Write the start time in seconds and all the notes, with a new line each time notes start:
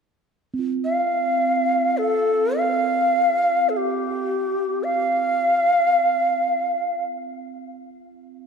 0.54 C4
0.59 F4
0.84 F5
1.98 A4
2.58 F5
3.69 A4
3.77 G4
4.84 F5